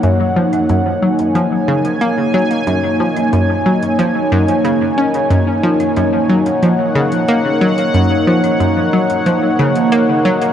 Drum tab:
HH |x--xx--xx--xx--x|x--xx--xx--xx--x|x--xx--xx--xx--x|x--xx--xx--xx--x|
CL |---x----x-x-----|---x------x-----|---x----x-x-----|---x------x-----|